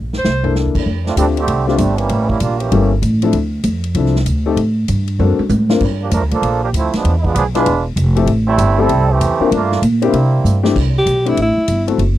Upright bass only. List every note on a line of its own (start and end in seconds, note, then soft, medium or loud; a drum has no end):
0.00 0.22 A#1 medium
0.25 0.63 C2 medium
0.66 0.74 D2 medium
0.75 0.85 E2 medium
0.86 1.15 F2 medium
1.16 1.47 D2 medium
1.47 1.78 C2 medium
1.78 2.09 G1 medium
2.10 2.40 A1 medium
2.41 2.71 A#1 medium
2.71 3.01 G1 medium
3.02 3.32 A1 medium
3.33 3.63 D2 medium
3.64 3.94 F2 medium
3.95 4.25 C2 medium
4.26 4.56 D2 medium
4.56 4.87 A2 medium
4.89 5.18 G2 medium
5.19 5.37 F#2 medium
5.39 muted upright bass stroke soft
5.50 5.80 A2 medium
5.81 6.11 G2 medium
6.11 6.22 F2 medium
6.22 6.31 D2 medium
6.32 6.41 A#1 medium
6.42 6.72 A#1 medium
6.73 6.92 D2 medium
6.94 muted upright bass stroke soft
7.04 7.35 E2 medium
7.35 7.65 B1 medium
7.66 7.95 E1 medium
7.96 8.26 F1 medium
8.26 8.57 A1 medium
8.58 8.89 G1 medium
8.89 9.20 C2 medium
9.20 9.39 E2 medium
9.40 muted upright bass stroke soft
9.51 9.81 G2 medium
9.82 10.12 A#2 medium
10.13 10.43 C3 medium
10.44 10.74 G2 medium
10.76 11.05 C2 medium
11.06 11.36 B1 medium
11.37 11.56 A1 medium
11.57 muted upright bass stroke soft
11.68 11.97 G1 medium
11.98 12.18 F#1 medium